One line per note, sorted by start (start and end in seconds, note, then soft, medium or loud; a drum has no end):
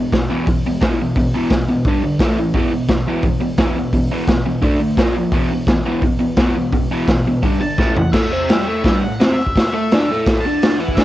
0.00 0.11 E2 medium
0.00 0.12 B2 medium
0.12 0.29 E2 medium
0.12 0.28 B2 medium
0.12 kick loud
0.12 snare loud
0.12 open hi-hat soft
0.30 0.46 E2 medium
0.30 0.46 B2 medium
0.30 0.47 E3 medium
0.47 0.63 E2 medium
0.47 0.63 B2 medium
0.47 kick loud
0.47 open hi-hat medium
0.66 0.80 E2 medium
0.66 0.81 B2 medium
0.81 0.97 E2 medium
0.81 0.98 B2 medium
0.81 0.98 E3 loud
0.81 kick loud
0.81 snare loud
0.81 open hi-hat medium
1.01 1.15 E2 medium
1.01 1.16 B2 medium
1.15 1.32 E2 medium
1.15 1.32 B2 medium
1.15 kick medium
1.15 open hi-hat medium
1.34 1.50 E2 medium
1.34 1.51 B2 medium
1.34 1.51 E3 medium
1.50 1.67 E2 medium
1.50 1.67 B2 medium
1.50 kick loud
1.50 snare loud
1.50 open hi-hat medium
1.69 1.84 E2 medium
1.69 1.84 B2 medium
1.85 2.02 G2 medium
1.85 2.02 D3 medium
1.85 kick loud
1.85 open hi-hat medium
1.89 2.03 G3 medium
2.03 2.18 G2 medium
2.03 2.19 D3 medium
2.19 2.37 A2 medium
2.19 2.37 E3 medium
2.19 2.38 A3 loud
2.19 kick loud
2.19 snare loud
2.19 open hi-hat medium
2.38 2.53 A2 medium
2.38 2.54 E3 medium
2.53 2.71 E2 medium
2.53 2.71 B2 medium
2.53 2.72 E3 loud
2.53 kick loud
2.53 open hi-hat soft
2.72 2.87 E2 medium
2.72 2.88 B2 medium
2.88 3.05 E2 medium
2.88 3.05 B2 medium
2.88 kick loud
2.88 snare loud
2.88 open hi-hat soft
3.07 3.23 E2 medium
3.07 3.23 B2 medium
3.07 3.24 E3 medium
3.22 3.39 E2 medium
3.22 3.40 B2 medium
3.22 kick loud
3.22 open hi-hat medium
3.40 3.56 E2 medium
3.40 3.57 B2 medium
3.57 3.75 E2 medium
3.57 3.75 B2 medium
3.57 3.76 E3 loud
3.57 kick loud
3.57 snare loud
3.57 open hi-hat medium
3.77 3.92 E2 medium
3.77 3.93 B2 medium
3.93 4.09 E2 medium
3.93 4.09 B2 medium
3.93 kick loud
3.93 open hi-hat medium
4.12 4.28 E2 medium
4.12 4.28 B2 medium
4.12 4.28 E3 medium
4.28 4.45 E2 medium
4.28 4.45 B2 medium
4.28 kick loud
4.28 snare loud
4.28 open hi-hat medium
4.46 4.62 E2 medium
4.46 4.61 B2 medium
4.62 4.79 D3 medium
4.62 4.79 A3 medium
4.62 4.80 D4 loud
4.62 kick loud
4.62 open hi-hat medium
4.80 4.96 D3 medium
4.80 4.96 A3 medium
4.97 5.15 A#2 medium
4.97 5.15 F3 medium
4.97 5.16 A#3 loud
4.97 kick loud
4.97 snare loud
4.97 open hi-hat medium
5.16 5.31 A#2 medium
5.16 5.32 F3 medium
5.32 5.50 E2 medium
5.32 5.50 B2 loud
5.32 5.50 E3 medium
5.32 kick loud
5.32 open hi-hat medium
5.52 5.67 E2 medium
5.52 5.67 B2 medium
5.67 5.84 E2 medium
5.67 5.85 B2 medium
5.67 kick loud
5.67 snare loud
5.67 open hi-hat medium
5.85 6.02 E2 medium
5.85 6.03 B2 loud
5.85 6.03 E3 loud
6.02 6.19 E2 medium
6.02 6.19 B2 medium
6.02 kick loud
6.02 open hi-hat soft
6.20 6.37 E2 medium
6.20 6.36 B2 medium
6.36 6.55 E2 medium
6.36 6.55 B2 loud
6.36 6.56 E3 loud
6.36 kick loud
6.36 snare loud
6.36 open hi-hat medium
6.56 6.72 E2 medium
6.56 6.72 B2 medium
6.73 6.89 E2 medium
6.73 6.89 B2 medium
6.73 kick loud
6.73 open hi-hat medium
6.91 7.08 E2 medium
6.91 7.08 B2 medium
6.91 7.09 E3 loud
7.07 7.26 E2 medium
7.07 7.26 B2 medium
7.07 kick loud
7.07 snare loud
7.07 open hi-hat medium
7.27 7.42 E2 medium
7.27 7.43 B2 medium
7.43 7.58 G2 medium
7.43 7.60 D3 medium
7.43 7.61 G3 medium
7.43 kick loud
7.43 open hi-hat medium
7.60 7.77 G2 medium
7.60 7.77 D3 medium
7.60 7.94 A5 loud
7.78 7.95 A2 medium
7.78 7.95 E3 loud
7.78 7.96 A3 loud
7.78 kick loud
7.78 snare medium
7.93 8.12 A2 medium
7.93 8.13 E3 medium
7.93 8.12 F#5 medium
7.93 floor tom medium
8.12 8.31 A2 medium
8.12 8.31 A3 loud
8.12 8.61 E5 medium
8.12 kick loud
8.12 snare loud
8.12 crash loud
8.32 8.49 C3 medium
8.32 8.50 C4 loud
8.49 8.67 G3 medium
8.49 8.67 G4 loud
8.49 snare loud
8.49 open hi-hat medium
8.62 8.97 E5 medium
8.67 8.84 A2 medium
8.67 8.85 A3 loud
8.84 9.02 G2 medium
8.84 9.02 G3 loud
8.84 kick loud
8.84 snare loud
8.84 open hi-hat medium
8.97 9.32 F#5 loud
9.02 9.17 A2 medium
9.20 9.37 C3 medium
9.20 9.38 C4 loud
9.20 snare loud
9.20 open hi-hat medium
9.32 9.67 E5 loud
9.38 muted overdriven electric guitar stroke medium
9.46 kick medium
9.56 kick medium
9.56 snare loud
9.56 open hi-hat medium
9.68 10.20 E5 medium
9.73 9.90 A3 medium
9.73 9.91 A4 medium
9.91 10.09 D3 medium
9.91 10.09 D4 loud
9.91 snare loud
9.91 open hi-hat medium
10.10 10.44 A2 medium
10.10 10.45 A3 loud
10.26 kick loud
10.26 snare loud
10.26 open hi-hat medium
10.41 10.79 A5 loud
10.46 10.80 D3 medium
10.46 10.80 D4 loud
10.62 snare loud
10.62 open hi-hat medium
10.76 10.95 F#5 medium
10.80 10.97 E3 medium
10.80 10.98 E4 medium
10.88 kick medium
10.95 11.04 D3 medium
10.95 11.04 D4 loud
10.95 11.04 E5 medium
10.95 kick medium
10.95 snare loud
10.95 crash medium